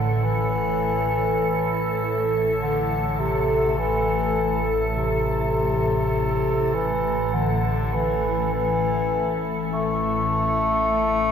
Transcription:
0, 0, Header, 1, 4, 480
1, 0, Start_track
1, 0, Key_signature, 0, "minor"
1, 0, Tempo, 1183432
1, 107, Time_signature, 4, 2, 24, 8
1, 2988, Tempo, 1197605
1, 4571, End_track
2, 0, Start_track
2, 0, Title_t, "Ambient pad"
2, 0, Program_c, 0, 92
2, 0, Note_on_c, 0, 69, 78
2, 4571, Note_off_c, 0, 69, 0
2, 4571, End_track
3, 0, Start_track
3, 0, Title_t, "Bass clarinet"
3, 0, Program_c, 1, 71
3, 0, Note_on_c, 1, 50, 74
3, 96, Note_on_c, 1, 52, 90
3, 102, Note_off_c, 1, 50, 0
3, 954, Note_off_c, 1, 52, 0
3, 1061, Note_on_c, 1, 50, 87
3, 1295, Note_on_c, 1, 48, 84
3, 1301, Note_off_c, 1, 50, 0
3, 1533, Note_on_c, 1, 52, 88
3, 1540, Note_off_c, 1, 48, 0
3, 1899, Note_off_c, 1, 52, 0
3, 2009, Note_on_c, 1, 48, 88
3, 2734, Note_on_c, 1, 52, 86
3, 2740, Note_off_c, 1, 48, 0
3, 2976, Note_on_c, 1, 50, 88
3, 2982, Note_off_c, 1, 52, 0
3, 3217, Note_on_c, 1, 52, 90
3, 3223, Note_off_c, 1, 50, 0
3, 3451, Note_off_c, 1, 52, 0
3, 3454, Note_on_c, 1, 52, 95
3, 3815, Note_off_c, 1, 52, 0
3, 3935, Note_on_c, 1, 57, 101
3, 4571, Note_off_c, 1, 57, 0
3, 4571, End_track
4, 0, Start_track
4, 0, Title_t, "Synth drone"
4, 0, Program_c, 2, 95
4, 0, Note_on_c, 2, 33, 72
4, 0, Note_on_c, 2, 45, 64
4, 4571, Note_off_c, 2, 33, 0
4, 4571, Note_off_c, 2, 45, 0
4, 4571, End_track
0, 0, End_of_file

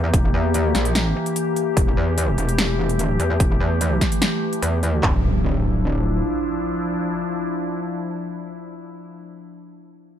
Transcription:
0, 0, Header, 1, 5, 480
1, 0, Start_track
1, 0, Key_signature, -1, "minor"
1, 0, Tempo, 408163
1, 159, Time_signature, 4, 2, 24, 8
1, 11987, End_track
2, 0, Start_track
2, 0, Title_t, "Ambient pad"
2, 0, Program_c, 0, 92
2, 0, Note_on_c, 0, 52, 78
2, 0, Note_on_c, 0, 58, 70
2, 0, Note_on_c, 0, 67, 88
2, 2041, Note_off_c, 0, 58, 0
2, 2078, Note_on_c, 0, 57, 72
2, 5872, Note_off_c, 0, 52, 0
2, 5872, Note_off_c, 0, 67, 0
2, 5880, Note_off_c, 0, 57, 0
2, 5918, Note_on_c, 0, 62, 70
2, 5918, Note_on_c, 0, 64, 84
2, 5919, Note_on_c, 0, 53, 77
2, 10652, Note_off_c, 0, 53, 0
2, 10652, Note_off_c, 0, 62, 0
2, 10652, Note_off_c, 0, 64, 0
2, 11987, End_track
3, 0, Start_track
3, 0, Title_t, "Wobble bass"
3, 0, Program_c, 1, 39
3, 0, Note_on_c, 1, 40, 90
3, 140, Note_off_c, 1, 40, 0
3, 159, Note_on_c, 1, 28, 85
3, 380, Note_off_c, 1, 28, 0
3, 399, Note_on_c, 1, 40, 86
3, 860, Note_off_c, 1, 40, 0
3, 879, Note_on_c, 1, 34, 94
3, 1340, Note_off_c, 1, 34, 0
3, 2079, Note_on_c, 1, 28, 89
3, 2300, Note_off_c, 1, 28, 0
3, 2319, Note_on_c, 1, 40, 94
3, 2780, Note_off_c, 1, 40, 0
3, 2799, Note_on_c, 1, 28, 92
3, 3469, Note_off_c, 1, 28, 0
3, 3469, Note_on_c, 1, 27, 92
3, 3740, Note_off_c, 1, 27, 0
3, 3758, Note_on_c, 1, 40, 86
3, 3980, Note_off_c, 1, 40, 0
3, 3999, Note_on_c, 1, 28, 87
3, 4220, Note_off_c, 1, 28, 0
3, 4238, Note_on_c, 1, 40, 88
3, 4700, Note_off_c, 1, 40, 0
3, 5438, Note_on_c, 1, 40, 87
3, 5900, Note_off_c, 1, 40, 0
3, 5918, Note_on_c, 1, 26, 88
3, 7311, Note_off_c, 1, 26, 0
3, 11987, End_track
4, 0, Start_track
4, 0, Title_t, "Impact"
4, 0, Program_c, 2, 103
4, 5918, Note_on_c, 2, 60, 64
4, 11052, Note_off_c, 2, 60, 0
4, 11987, End_track
5, 0, Start_track
5, 0, Title_t, "Drums"
5, 159, Note_on_c, 9, 36, 107
5, 160, Note_on_c, 9, 42, 71
5, 277, Note_off_c, 9, 36, 0
5, 277, Note_off_c, 9, 42, 0
5, 639, Note_on_c, 9, 42, 75
5, 757, Note_off_c, 9, 42, 0
5, 879, Note_on_c, 9, 38, 53
5, 879, Note_on_c, 9, 42, 48
5, 997, Note_off_c, 9, 38, 0
5, 997, Note_off_c, 9, 42, 0
5, 1003, Note_on_c, 9, 42, 49
5, 1119, Note_off_c, 9, 42, 0
5, 1119, Note_on_c, 9, 38, 103
5, 1119, Note_on_c, 9, 42, 71
5, 1237, Note_off_c, 9, 38, 0
5, 1237, Note_off_c, 9, 42, 0
5, 1484, Note_on_c, 9, 42, 47
5, 1600, Note_off_c, 9, 42, 0
5, 1600, Note_on_c, 9, 42, 77
5, 1717, Note_off_c, 9, 42, 0
5, 1840, Note_on_c, 9, 42, 47
5, 1957, Note_off_c, 9, 42, 0
5, 2079, Note_on_c, 9, 36, 99
5, 2080, Note_on_c, 9, 42, 69
5, 2196, Note_off_c, 9, 36, 0
5, 2197, Note_off_c, 9, 42, 0
5, 2560, Note_on_c, 9, 42, 74
5, 2677, Note_off_c, 9, 42, 0
5, 2799, Note_on_c, 9, 42, 50
5, 2917, Note_off_c, 9, 42, 0
5, 2924, Note_on_c, 9, 42, 49
5, 3039, Note_off_c, 9, 42, 0
5, 3039, Note_on_c, 9, 38, 102
5, 3039, Note_on_c, 9, 42, 71
5, 3157, Note_off_c, 9, 38, 0
5, 3157, Note_off_c, 9, 42, 0
5, 3404, Note_on_c, 9, 42, 47
5, 3519, Note_off_c, 9, 42, 0
5, 3519, Note_on_c, 9, 42, 75
5, 3637, Note_off_c, 9, 42, 0
5, 3759, Note_on_c, 9, 42, 50
5, 3877, Note_off_c, 9, 42, 0
5, 3999, Note_on_c, 9, 36, 100
5, 3999, Note_on_c, 9, 42, 68
5, 4116, Note_off_c, 9, 36, 0
5, 4117, Note_off_c, 9, 42, 0
5, 4480, Note_on_c, 9, 42, 79
5, 4597, Note_off_c, 9, 42, 0
5, 4719, Note_on_c, 9, 36, 54
5, 4720, Note_on_c, 9, 38, 57
5, 4720, Note_on_c, 9, 42, 50
5, 4836, Note_off_c, 9, 36, 0
5, 4837, Note_off_c, 9, 38, 0
5, 4837, Note_off_c, 9, 42, 0
5, 4844, Note_on_c, 9, 42, 50
5, 4959, Note_off_c, 9, 42, 0
5, 4959, Note_on_c, 9, 38, 109
5, 4959, Note_on_c, 9, 42, 80
5, 5077, Note_off_c, 9, 38, 0
5, 5077, Note_off_c, 9, 42, 0
5, 5324, Note_on_c, 9, 42, 48
5, 5439, Note_off_c, 9, 42, 0
5, 5439, Note_on_c, 9, 42, 75
5, 5557, Note_off_c, 9, 42, 0
5, 5679, Note_on_c, 9, 42, 48
5, 5797, Note_off_c, 9, 42, 0
5, 5918, Note_on_c, 9, 36, 92
5, 5918, Note_on_c, 9, 39, 81
5, 6036, Note_off_c, 9, 36, 0
5, 6036, Note_off_c, 9, 39, 0
5, 11987, End_track
0, 0, End_of_file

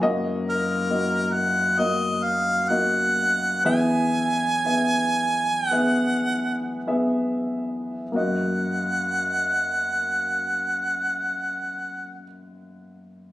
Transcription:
0, 0, Header, 1, 3, 480
1, 0, Start_track
1, 0, Tempo, 891530
1, 17, Time_signature, 4, 2, 24, 8
1, 1458, Tempo, 949367
1, 1938, Tempo, 1001669
1, 2418, Tempo, 1065719
1, 2898, Tempo, 1153846
1, 3378, Tempo, 1263158
1, 3858, Tempo, 1310044
1, 5756, End_track
2, 0, Start_track
2, 0, Title_t, "Harmonica"
2, 0, Program_c, 0, 22
2, 264, Note_on_c, 0, 70, 68
2, 720, Note_on_c, 0, 78, 72
2, 728, Note_off_c, 0, 70, 0
2, 966, Note_on_c, 0, 75, 72
2, 974, Note_off_c, 0, 78, 0
2, 1203, Note_on_c, 0, 77, 66
2, 1211, Note_off_c, 0, 75, 0
2, 1448, Note_on_c, 0, 78, 78
2, 1456, Note_off_c, 0, 77, 0
2, 1934, Note_off_c, 0, 78, 0
2, 1936, Note_on_c, 0, 80, 80
2, 2880, Note_off_c, 0, 80, 0
2, 2880, Note_on_c, 0, 78, 80
2, 3361, Note_off_c, 0, 78, 0
2, 3861, Note_on_c, 0, 78, 56
2, 5360, Note_off_c, 0, 78, 0
2, 5756, End_track
3, 0, Start_track
3, 0, Title_t, "Grand piano"
3, 0, Program_c, 1, 0
3, 0, Control_c, 1, 64, 127
3, 8, Note_on_c, 1, 58, 97
3, 12, Note_on_c, 1, 42, 67
3, 12, Note_on_c, 1, 66, 90
3, 13, Note_on_c, 1, 30, 64
3, 15, Note_on_c, 1, 75, 112
3, 23, Control_c, 1, 64, 0
3, 114, Control_c, 1, 64, 127
3, 444, Note_off_c, 1, 58, 0
3, 446, Note_off_c, 1, 66, 0
3, 447, Note_off_c, 1, 75, 0
3, 483, Note_on_c, 1, 58, 57
3, 487, Note_on_c, 1, 66, 51
3, 488, Note_on_c, 1, 75, 64
3, 923, Note_off_c, 1, 58, 0
3, 925, Note_off_c, 1, 66, 0
3, 926, Note_off_c, 1, 75, 0
3, 962, Note_on_c, 1, 58, 61
3, 964, Note_on_c, 1, 66, 54
3, 965, Note_on_c, 1, 75, 67
3, 1413, Note_off_c, 1, 58, 0
3, 1414, Note_off_c, 1, 66, 0
3, 1415, Note_off_c, 1, 75, 0
3, 1453, Note_on_c, 1, 58, 58
3, 1455, Note_on_c, 1, 66, 49
3, 1457, Note_on_c, 1, 75, 61
3, 1894, Note_off_c, 1, 58, 0
3, 1895, Note_off_c, 1, 66, 0
3, 1896, Note_off_c, 1, 75, 0
3, 1916, Note_off_c, 1, 42, 0
3, 1917, Note_off_c, 1, 30, 0
3, 1932, Note_on_c, 1, 59, 72
3, 1934, Note_on_c, 1, 40, 52
3, 1935, Note_on_c, 1, 52, 49
3, 1936, Note_on_c, 1, 68, 67
3, 1939, Note_on_c, 1, 76, 87
3, 1945, Control_c, 1, 64, 0
3, 2017, Control_c, 1, 64, 127
3, 2374, Note_off_c, 1, 59, 0
3, 2375, Note_off_c, 1, 68, 0
3, 2377, Note_off_c, 1, 76, 0
3, 2413, Note_on_c, 1, 59, 54
3, 2416, Note_on_c, 1, 68, 48
3, 2418, Note_on_c, 1, 76, 61
3, 2854, Note_off_c, 1, 59, 0
3, 2855, Note_off_c, 1, 68, 0
3, 2857, Note_off_c, 1, 76, 0
3, 2892, Note_on_c, 1, 59, 64
3, 2895, Note_on_c, 1, 68, 62
3, 2899, Note_on_c, 1, 76, 68
3, 3333, Note_off_c, 1, 59, 0
3, 3334, Note_off_c, 1, 68, 0
3, 3336, Note_off_c, 1, 76, 0
3, 3375, Note_on_c, 1, 59, 58
3, 3377, Note_on_c, 1, 68, 55
3, 3378, Note_on_c, 1, 76, 65
3, 3814, Note_off_c, 1, 59, 0
3, 3815, Note_off_c, 1, 68, 0
3, 3816, Note_off_c, 1, 76, 0
3, 3842, Note_off_c, 1, 40, 0
3, 3842, Note_off_c, 1, 52, 0
3, 3850, Note_on_c, 1, 58, 57
3, 3858, Note_on_c, 1, 42, 52
3, 3858, Note_on_c, 1, 66, 48
3, 3864, Control_c, 1, 64, 0
3, 3865, Note_on_c, 1, 75, 64
3, 3924, Control_c, 1, 64, 127
3, 5349, Note_off_c, 1, 58, 0
3, 5357, Note_off_c, 1, 42, 0
3, 5358, Note_off_c, 1, 66, 0
3, 5364, Note_off_c, 1, 75, 0
3, 5756, End_track
0, 0, End_of_file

